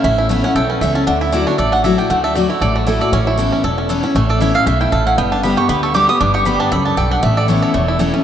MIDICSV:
0, 0, Header, 1, 5, 480
1, 0, Start_track
1, 0, Tempo, 256520
1, 86, Time_signature, 4, 2, 24, 8
1, 15413, End_track
2, 0, Start_track
2, 0, Title_t, "Mandolin"
2, 0, Program_c, 0, 25
2, 81, Note_on_c, 0, 76, 92
2, 776, Note_off_c, 0, 76, 0
2, 826, Note_on_c, 0, 78, 96
2, 1032, Note_off_c, 0, 78, 0
2, 1039, Note_on_c, 0, 79, 96
2, 1300, Note_off_c, 0, 79, 0
2, 1301, Note_on_c, 0, 71, 61
2, 1518, Note_off_c, 0, 71, 0
2, 1522, Note_on_c, 0, 76, 84
2, 1772, Note_off_c, 0, 76, 0
2, 1780, Note_on_c, 0, 81, 98
2, 1992, Note_off_c, 0, 81, 0
2, 1999, Note_on_c, 0, 78, 81
2, 2261, Note_off_c, 0, 78, 0
2, 2269, Note_on_c, 0, 76, 90
2, 2483, Note_off_c, 0, 76, 0
2, 2483, Note_on_c, 0, 74, 77
2, 2744, Note_off_c, 0, 74, 0
2, 2752, Note_on_c, 0, 73, 84
2, 2957, Note_off_c, 0, 73, 0
2, 2965, Note_on_c, 0, 74, 78
2, 3225, Note_off_c, 0, 74, 0
2, 3233, Note_on_c, 0, 78, 102
2, 3440, Note_off_c, 0, 78, 0
2, 3447, Note_on_c, 0, 76, 84
2, 3706, Note_off_c, 0, 76, 0
2, 3715, Note_on_c, 0, 79, 89
2, 3926, Note_off_c, 0, 79, 0
2, 3933, Note_on_c, 0, 78, 90
2, 4187, Note_off_c, 0, 78, 0
2, 4194, Note_on_c, 0, 76, 91
2, 4407, Note_off_c, 0, 76, 0
2, 4413, Note_on_c, 0, 74, 76
2, 4670, Note_off_c, 0, 74, 0
2, 4678, Note_on_c, 0, 73, 86
2, 4889, Note_off_c, 0, 73, 0
2, 4896, Note_on_c, 0, 74, 97
2, 5152, Note_off_c, 0, 74, 0
2, 5157, Note_on_c, 0, 66, 65
2, 5367, Note_on_c, 0, 69, 82
2, 5369, Note_off_c, 0, 66, 0
2, 5623, Note_off_c, 0, 69, 0
2, 5631, Note_on_c, 0, 74, 92
2, 5843, Note_off_c, 0, 74, 0
2, 5850, Note_on_c, 0, 73, 90
2, 7218, Note_off_c, 0, 73, 0
2, 7773, Note_on_c, 0, 73, 86
2, 8026, Note_off_c, 0, 73, 0
2, 8033, Note_on_c, 0, 74, 92
2, 8246, Note_off_c, 0, 74, 0
2, 8252, Note_on_c, 0, 76, 81
2, 8502, Note_off_c, 0, 76, 0
2, 8509, Note_on_c, 0, 77, 102
2, 8723, Note_off_c, 0, 77, 0
2, 8735, Note_on_c, 0, 76, 77
2, 8985, Note_off_c, 0, 76, 0
2, 8992, Note_on_c, 0, 79, 83
2, 9201, Note_off_c, 0, 79, 0
2, 9209, Note_on_c, 0, 81, 108
2, 9466, Note_off_c, 0, 81, 0
2, 9480, Note_on_c, 0, 78, 93
2, 9686, Note_off_c, 0, 78, 0
2, 9694, Note_on_c, 0, 79, 96
2, 9947, Note_off_c, 0, 79, 0
2, 9955, Note_on_c, 0, 81, 98
2, 10160, Note_off_c, 0, 81, 0
2, 10168, Note_on_c, 0, 83, 86
2, 10424, Note_off_c, 0, 83, 0
2, 10433, Note_on_c, 0, 85, 109
2, 10644, Note_off_c, 0, 85, 0
2, 10653, Note_on_c, 0, 83, 90
2, 10902, Note_off_c, 0, 83, 0
2, 10909, Note_on_c, 0, 85, 88
2, 11117, Note_off_c, 0, 85, 0
2, 11125, Note_on_c, 0, 86, 102
2, 11382, Note_off_c, 0, 86, 0
2, 11393, Note_on_c, 0, 87, 113
2, 11603, Note_off_c, 0, 87, 0
2, 11611, Note_on_c, 0, 86, 92
2, 11854, Note_off_c, 0, 86, 0
2, 11862, Note_on_c, 0, 85, 112
2, 12077, Note_off_c, 0, 85, 0
2, 12087, Note_on_c, 0, 83, 91
2, 12339, Note_off_c, 0, 83, 0
2, 12347, Note_on_c, 0, 81, 102
2, 12559, Note_off_c, 0, 81, 0
2, 12568, Note_on_c, 0, 83, 108
2, 12816, Note_off_c, 0, 83, 0
2, 12824, Note_on_c, 0, 81, 93
2, 13037, Note_off_c, 0, 81, 0
2, 13049, Note_on_c, 0, 79, 95
2, 13303, Note_off_c, 0, 79, 0
2, 13312, Note_on_c, 0, 78, 87
2, 13521, Note_off_c, 0, 78, 0
2, 13528, Note_on_c, 0, 76, 87
2, 13782, Note_off_c, 0, 76, 0
2, 13796, Note_on_c, 0, 74, 91
2, 14000, Note_off_c, 0, 74, 0
2, 14007, Note_on_c, 0, 73, 82
2, 14244, Note_off_c, 0, 73, 0
2, 14266, Note_on_c, 0, 73, 85
2, 14713, Note_off_c, 0, 73, 0
2, 15413, End_track
3, 0, Start_track
3, 0, Title_t, "Five-string banjo"
3, 0, Program_c, 1, 105
3, 0, Note_on_c, 1, 57, 63
3, 0, Note_on_c, 1, 64, 60
3, 0, Note_on_c, 1, 69, 52
3, 75, Note_on_c, 1, 61, 68
3, 336, Note_off_c, 1, 64, 0
3, 343, Note_on_c, 1, 64, 60
3, 554, Note_off_c, 1, 57, 0
3, 562, Note_on_c, 1, 57, 53
3, 773, Note_off_c, 1, 61, 0
3, 824, Note_on_c, 1, 61, 62
3, 1032, Note_off_c, 1, 69, 0
3, 1039, Note_on_c, 1, 69, 69
3, 1280, Note_off_c, 1, 61, 0
3, 1303, Note_on_c, 1, 61, 60
3, 1514, Note_off_c, 1, 69, 0
3, 1521, Note_on_c, 1, 69, 58
3, 1760, Note_off_c, 1, 61, 0
3, 1783, Note_on_c, 1, 61, 68
3, 1993, Note_off_c, 1, 61, 0
3, 2000, Note_on_c, 1, 62, 69
3, 2056, Note_off_c, 1, 64, 0
3, 2266, Note_on_c, 1, 64, 63
3, 2474, Note_off_c, 1, 57, 0
3, 2481, Note_on_c, 1, 57, 52
3, 2698, Note_off_c, 1, 62, 0
3, 2744, Note_on_c, 1, 62, 60
3, 2954, Note_off_c, 1, 69, 0
3, 2961, Note_on_c, 1, 69, 67
3, 3199, Note_off_c, 1, 62, 0
3, 3221, Note_on_c, 1, 62, 60
3, 3277, Note_off_c, 1, 64, 0
3, 3440, Note_off_c, 1, 69, 0
3, 3447, Note_on_c, 1, 69, 57
3, 3682, Note_off_c, 1, 62, 0
3, 3705, Note_on_c, 1, 62, 61
3, 3920, Note_off_c, 1, 57, 0
3, 3927, Note_on_c, 1, 57, 78
3, 4182, Note_off_c, 1, 69, 0
3, 4189, Note_on_c, 1, 69, 68
3, 4366, Note_off_c, 1, 62, 0
3, 4397, Note_off_c, 1, 57, 0
3, 4404, Note_on_c, 1, 57, 54
3, 4671, Note_on_c, 1, 64, 58
3, 4884, Note_off_c, 1, 69, 0
3, 4892, Note_on_c, 1, 69, 65
3, 5149, Note_off_c, 1, 57, 0
3, 5156, Note_on_c, 1, 57, 59
3, 5367, Note_off_c, 1, 64, 0
3, 5375, Note_on_c, 1, 64, 63
3, 5631, Note_off_c, 1, 69, 0
3, 5639, Note_on_c, 1, 69, 63
3, 5856, Note_on_c, 1, 61, 66
3, 6113, Note_off_c, 1, 64, 0
3, 6121, Note_on_c, 1, 64, 61
3, 6329, Note_off_c, 1, 57, 0
3, 6336, Note_on_c, 1, 57, 50
3, 6546, Note_off_c, 1, 61, 0
3, 6593, Note_on_c, 1, 61, 60
3, 6774, Note_off_c, 1, 64, 0
3, 6808, Note_off_c, 1, 69, 0
3, 6816, Note_on_c, 1, 69, 68
3, 7026, Note_off_c, 1, 57, 0
3, 7051, Note_off_c, 1, 61, 0
3, 7074, Note_on_c, 1, 61, 62
3, 7270, Note_off_c, 1, 69, 0
3, 7292, Note_on_c, 1, 69, 55
3, 7530, Note_off_c, 1, 61, 0
3, 7553, Note_on_c, 1, 61, 57
3, 7778, Note_on_c, 1, 57, 81
3, 7984, Note_off_c, 1, 69, 0
3, 8047, Note_on_c, 1, 69, 64
3, 8209, Note_off_c, 1, 61, 0
3, 8255, Note_on_c, 1, 64, 56
3, 8466, Note_off_c, 1, 57, 0
3, 8493, Note_off_c, 1, 69, 0
3, 8516, Note_on_c, 1, 69, 60
3, 8729, Note_on_c, 1, 57, 67
3, 8944, Note_off_c, 1, 64, 0
3, 8996, Note_on_c, 1, 64, 61
3, 9169, Note_off_c, 1, 69, 0
3, 9213, Note_on_c, 1, 69, 64
3, 9421, Note_off_c, 1, 57, 0
3, 9479, Note_on_c, 1, 61, 60
3, 9649, Note_off_c, 1, 64, 0
3, 9691, Note_on_c, 1, 59, 81
3, 9693, Note_off_c, 1, 69, 0
3, 9694, Note_off_c, 1, 61, 0
3, 9953, Note_on_c, 1, 62, 62
3, 10161, Note_off_c, 1, 59, 0
3, 10169, Note_on_c, 1, 59, 60
3, 10426, Note_on_c, 1, 67, 63
3, 10607, Note_off_c, 1, 62, 0
3, 10638, Note_off_c, 1, 59, 0
3, 10646, Note_on_c, 1, 59, 70
3, 10909, Note_on_c, 1, 69, 60
3, 11083, Note_off_c, 1, 67, 0
3, 11129, Note_on_c, 1, 67, 64
3, 11389, Note_off_c, 1, 59, 0
3, 11397, Note_on_c, 1, 59, 62
3, 11563, Note_off_c, 1, 69, 0
3, 11609, Note_on_c, 1, 62, 67
3, 11819, Note_off_c, 1, 67, 0
3, 11875, Note_on_c, 1, 67, 64
3, 12082, Note_off_c, 1, 59, 0
3, 12089, Note_on_c, 1, 59, 51
3, 12298, Note_off_c, 1, 62, 0
3, 12350, Note_on_c, 1, 62, 60
3, 12526, Note_off_c, 1, 67, 0
3, 12574, Note_on_c, 1, 69, 67
3, 12807, Note_off_c, 1, 62, 0
3, 12830, Note_on_c, 1, 62, 58
3, 13026, Note_off_c, 1, 69, 0
3, 13048, Note_on_c, 1, 69, 63
3, 13104, Note_off_c, 1, 59, 0
3, 13287, Note_off_c, 1, 62, 0
3, 13310, Note_on_c, 1, 62, 60
3, 13523, Note_on_c, 1, 57, 77
3, 13527, Note_off_c, 1, 62, 0
3, 13527, Note_off_c, 1, 69, 0
3, 13793, Note_on_c, 1, 69, 59
3, 14003, Note_on_c, 1, 64, 50
3, 14259, Note_off_c, 1, 69, 0
3, 14267, Note_on_c, 1, 69, 61
3, 14481, Note_off_c, 1, 57, 0
3, 14488, Note_on_c, 1, 57, 72
3, 14744, Note_off_c, 1, 64, 0
3, 14751, Note_on_c, 1, 64, 58
3, 14961, Note_off_c, 1, 69, 0
3, 14968, Note_on_c, 1, 69, 57
3, 15226, Note_on_c, 1, 61, 61
3, 15413, Note_off_c, 1, 57, 0
3, 15413, Note_off_c, 1, 61, 0
3, 15413, Note_off_c, 1, 64, 0
3, 15413, Note_off_c, 1, 69, 0
3, 15413, End_track
4, 0, Start_track
4, 0, Title_t, "Steel-string acoustic guitar"
4, 0, Program_c, 2, 25
4, 80, Note_on_c, 2, 45, 91
4, 547, Note_on_c, 2, 52, 88
4, 566, Note_on_c, 2, 59, 83
4, 578, Note_on_c, 2, 61, 104
4, 588, Note_on_c, 2, 64, 90
4, 793, Note_off_c, 2, 64, 0
4, 810, Note_off_c, 2, 52, 0
4, 815, Note_on_c, 2, 64, 59
4, 820, Note_off_c, 2, 59, 0
4, 826, Note_off_c, 2, 61, 0
4, 857, Note_on_c, 2, 61, 47
4, 1003, Note_off_c, 2, 45, 0
4, 1032, Note_off_c, 2, 64, 0
4, 1041, Note_on_c, 2, 40, 86
4, 1053, Note_off_c, 2, 61, 0
4, 1522, Note_on_c, 2, 52, 82
4, 1541, Note_on_c, 2, 59, 90
4, 1550, Note_on_c, 2, 61, 84
4, 1562, Note_on_c, 2, 64, 98
4, 1759, Note_off_c, 2, 64, 0
4, 1780, Note_off_c, 2, 52, 0
4, 1782, Note_on_c, 2, 64, 67
4, 1789, Note_off_c, 2, 59, 0
4, 1793, Note_off_c, 2, 61, 0
4, 1819, Note_on_c, 2, 61, 51
4, 1964, Note_off_c, 2, 40, 0
4, 1997, Note_off_c, 2, 64, 0
4, 2008, Note_on_c, 2, 50, 97
4, 2016, Note_off_c, 2, 61, 0
4, 2477, Note_on_c, 2, 54, 94
4, 2491, Note_on_c, 2, 57, 90
4, 2503, Note_on_c, 2, 64, 92
4, 2518, Note_on_c, 2, 66, 99
4, 2726, Note_off_c, 2, 66, 0
4, 2738, Note_off_c, 2, 54, 0
4, 2745, Note_off_c, 2, 57, 0
4, 2749, Note_on_c, 2, 66, 57
4, 2751, Note_off_c, 2, 64, 0
4, 2789, Note_on_c, 2, 64, 45
4, 2929, Note_off_c, 2, 50, 0
4, 2962, Note_off_c, 2, 66, 0
4, 2973, Note_on_c, 2, 45, 92
4, 2982, Note_off_c, 2, 64, 0
4, 3442, Note_on_c, 2, 54, 77
4, 3459, Note_on_c, 2, 57, 93
4, 3469, Note_on_c, 2, 64, 87
4, 3482, Note_on_c, 2, 66, 89
4, 3686, Note_off_c, 2, 66, 0
4, 3701, Note_off_c, 2, 54, 0
4, 3708, Note_on_c, 2, 66, 61
4, 3710, Note_off_c, 2, 57, 0
4, 3715, Note_off_c, 2, 64, 0
4, 3748, Note_on_c, 2, 64, 52
4, 3892, Note_off_c, 2, 45, 0
4, 3922, Note_off_c, 2, 66, 0
4, 3935, Note_on_c, 2, 50, 88
4, 3942, Note_off_c, 2, 64, 0
4, 4406, Note_on_c, 2, 54, 83
4, 4424, Note_on_c, 2, 57, 89
4, 4436, Note_on_c, 2, 64, 89
4, 4446, Note_on_c, 2, 66, 98
4, 4638, Note_off_c, 2, 66, 0
4, 4661, Note_on_c, 2, 66, 53
4, 4664, Note_off_c, 2, 54, 0
4, 4673, Note_off_c, 2, 57, 0
4, 4679, Note_off_c, 2, 64, 0
4, 4704, Note_on_c, 2, 64, 43
4, 4853, Note_off_c, 2, 50, 0
4, 4879, Note_off_c, 2, 66, 0
4, 4898, Note_on_c, 2, 45, 99
4, 4900, Note_off_c, 2, 64, 0
4, 5362, Note_on_c, 2, 54, 84
4, 5380, Note_on_c, 2, 57, 85
4, 5393, Note_on_c, 2, 64, 88
4, 5407, Note_on_c, 2, 66, 85
4, 5608, Note_off_c, 2, 66, 0
4, 5622, Note_off_c, 2, 54, 0
4, 5630, Note_off_c, 2, 57, 0
4, 5630, Note_on_c, 2, 66, 62
4, 5637, Note_off_c, 2, 64, 0
4, 5671, Note_on_c, 2, 64, 50
4, 5814, Note_off_c, 2, 45, 0
4, 5843, Note_off_c, 2, 66, 0
4, 5855, Note_on_c, 2, 45, 98
4, 5864, Note_off_c, 2, 64, 0
4, 6317, Note_on_c, 2, 52, 85
4, 6333, Note_on_c, 2, 59, 80
4, 6347, Note_on_c, 2, 61, 88
4, 6359, Note_on_c, 2, 64, 102
4, 6772, Note_off_c, 2, 45, 0
4, 6785, Note_off_c, 2, 52, 0
4, 6793, Note_off_c, 2, 59, 0
4, 6800, Note_off_c, 2, 61, 0
4, 6806, Note_off_c, 2, 64, 0
4, 6810, Note_on_c, 2, 40, 98
4, 7281, Note_on_c, 2, 52, 87
4, 7298, Note_on_c, 2, 59, 95
4, 7310, Note_on_c, 2, 61, 98
4, 7323, Note_on_c, 2, 64, 81
4, 7521, Note_off_c, 2, 64, 0
4, 7541, Note_off_c, 2, 52, 0
4, 7543, Note_on_c, 2, 64, 68
4, 7549, Note_off_c, 2, 59, 0
4, 7555, Note_off_c, 2, 61, 0
4, 7582, Note_on_c, 2, 61, 51
4, 7729, Note_off_c, 2, 40, 0
4, 7759, Note_off_c, 2, 64, 0
4, 7775, Note_on_c, 2, 45, 91
4, 7779, Note_off_c, 2, 61, 0
4, 8243, Note_on_c, 2, 52, 88
4, 8259, Note_on_c, 2, 59, 83
4, 8270, Note_on_c, 2, 61, 89
4, 8283, Note_on_c, 2, 64, 92
4, 8475, Note_off_c, 2, 64, 0
4, 8497, Note_on_c, 2, 64, 62
4, 8501, Note_off_c, 2, 52, 0
4, 8509, Note_off_c, 2, 59, 0
4, 8514, Note_off_c, 2, 61, 0
4, 8541, Note_on_c, 2, 61, 46
4, 8691, Note_off_c, 2, 45, 0
4, 8715, Note_off_c, 2, 64, 0
4, 8736, Note_on_c, 2, 47, 95
4, 8737, Note_off_c, 2, 61, 0
4, 9193, Note_off_c, 2, 47, 0
4, 9210, Note_on_c, 2, 45, 79
4, 9669, Note_off_c, 2, 45, 0
4, 9696, Note_on_c, 2, 43, 98
4, 10167, Note_on_c, 2, 50, 77
4, 10181, Note_on_c, 2, 55, 79
4, 10196, Note_on_c, 2, 59, 85
4, 10208, Note_on_c, 2, 67, 91
4, 10410, Note_off_c, 2, 67, 0
4, 10421, Note_off_c, 2, 50, 0
4, 10428, Note_off_c, 2, 55, 0
4, 10433, Note_on_c, 2, 67, 58
4, 10436, Note_off_c, 2, 59, 0
4, 10476, Note_on_c, 2, 59, 47
4, 10609, Note_off_c, 2, 43, 0
4, 10642, Note_off_c, 2, 67, 0
4, 10651, Note_on_c, 2, 50, 95
4, 10663, Note_off_c, 2, 59, 0
4, 11096, Note_off_c, 2, 50, 0
4, 11118, Note_on_c, 2, 50, 82
4, 11135, Note_on_c, 2, 55, 91
4, 11147, Note_on_c, 2, 59, 91
4, 11161, Note_on_c, 2, 67, 97
4, 11357, Note_off_c, 2, 67, 0
4, 11376, Note_off_c, 2, 50, 0
4, 11379, Note_on_c, 2, 67, 59
4, 11384, Note_off_c, 2, 55, 0
4, 11390, Note_off_c, 2, 59, 0
4, 11418, Note_on_c, 2, 59, 51
4, 11594, Note_off_c, 2, 67, 0
4, 11612, Note_on_c, 2, 43, 92
4, 11613, Note_off_c, 2, 59, 0
4, 12074, Note_on_c, 2, 50, 79
4, 12092, Note_on_c, 2, 55, 85
4, 12106, Note_on_c, 2, 59, 83
4, 12115, Note_on_c, 2, 67, 96
4, 12526, Note_off_c, 2, 43, 0
4, 12539, Note_off_c, 2, 50, 0
4, 12548, Note_off_c, 2, 55, 0
4, 12554, Note_off_c, 2, 59, 0
4, 12559, Note_off_c, 2, 67, 0
4, 12567, Note_on_c, 2, 42, 90
4, 13025, Note_off_c, 2, 42, 0
4, 13046, Note_on_c, 2, 43, 82
4, 13504, Note_off_c, 2, 43, 0
4, 13521, Note_on_c, 2, 45, 94
4, 13998, Note_on_c, 2, 52, 78
4, 14014, Note_on_c, 2, 59, 84
4, 14027, Note_on_c, 2, 61, 93
4, 14037, Note_on_c, 2, 64, 87
4, 14439, Note_off_c, 2, 45, 0
4, 14460, Note_off_c, 2, 52, 0
4, 14468, Note_off_c, 2, 59, 0
4, 14474, Note_off_c, 2, 61, 0
4, 14479, Note_off_c, 2, 64, 0
4, 14484, Note_on_c, 2, 40, 83
4, 14955, Note_on_c, 2, 52, 96
4, 14971, Note_on_c, 2, 59, 81
4, 14981, Note_on_c, 2, 61, 84
4, 14994, Note_on_c, 2, 64, 91
4, 15199, Note_off_c, 2, 64, 0
4, 15212, Note_off_c, 2, 52, 0
4, 15220, Note_off_c, 2, 59, 0
4, 15221, Note_on_c, 2, 64, 62
4, 15225, Note_off_c, 2, 61, 0
4, 15263, Note_on_c, 2, 61, 48
4, 15400, Note_off_c, 2, 40, 0
4, 15413, Note_off_c, 2, 61, 0
4, 15413, Note_off_c, 2, 64, 0
4, 15413, End_track
5, 0, Start_track
5, 0, Title_t, "Upright bass"
5, 0, Program_c, 3, 32
5, 73, Note_on_c, 3, 33, 93
5, 754, Note_off_c, 3, 33, 0
5, 1031, Note_on_c, 3, 35, 87
5, 1448, Note_off_c, 3, 35, 0
5, 1518, Note_on_c, 3, 37, 89
5, 1933, Note_off_c, 3, 37, 0
5, 2003, Note_on_c, 3, 38, 90
5, 2682, Note_off_c, 3, 38, 0
5, 2969, Note_on_c, 3, 33, 84
5, 3646, Note_off_c, 3, 33, 0
5, 3923, Note_on_c, 3, 38, 88
5, 4602, Note_off_c, 3, 38, 0
5, 4883, Note_on_c, 3, 33, 86
5, 5561, Note_off_c, 3, 33, 0
5, 5842, Note_on_c, 3, 33, 91
5, 6521, Note_off_c, 3, 33, 0
5, 6803, Note_on_c, 3, 28, 83
5, 7481, Note_off_c, 3, 28, 0
5, 7762, Note_on_c, 3, 33, 88
5, 8440, Note_off_c, 3, 33, 0
5, 8726, Note_on_c, 3, 35, 87
5, 9137, Note_off_c, 3, 35, 0
5, 9211, Note_on_c, 3, 33, 83
5, 9619, Note_off_c, 3, 33, 0
5, 9694, Note_on_c, 3, 31, 95
5, 10366, Note_off_c, 3, 31, 0
5, 10649, Note_on_c, 3, 38, 80
5, 11322, Note_off_c, 3, 38, 0
5, 11615, Note_on_c, 3, 31, 88
5, 12285, Note_off_c, 3, 31, 0
5, 12571, Note_on_c, 3, 37, 87
5, 12977, Note_off_c, 3, 37, 0
5, 13042, Note_on_c, 3, 35, 80
5, 13451, Note_off_c, 3, 35, 0
5, 13530, Note_on_c, 3, 33, 95
5, 14201, Note_off_c, 3, 33, 0
5, 14492, Note_on_c, 3, 28, 90
5, 15163, Note_off_c, 3, 28, 0
5, 15413, End_track
0, 0, End_of_file